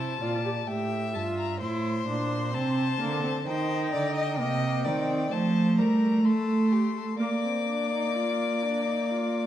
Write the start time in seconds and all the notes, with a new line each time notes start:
Already playing: C3 E4 C5 A5
0.21 A#2 F4 D5
0.45 G4
0.67 A2 G4 E5 G5
1.14 G2 F4 A5
1.38 A#5
1.61 A2 E4 C5 C6
2.07 A#2 D4
2.54 C3 C4 A5
3.00 D3 A#3
3.24 C4
3.46 D#3 D#4 C5 G5
3.92 D3 D5
4.15 D#5
4.38 C3 A#3 D#5
4.85 D#3 C4 D5
5.31 F3 A3 C5 A5
5.78 G3 A#4 A#5
6.25 A3 A4 C6
6.71 G4
6.96 A4
7.19 A#3 D5 D6
7.43 C4
7.67 D4
7.91 D#4
8.15 F4
8.62 D4
8.86 D#4
9.10 F4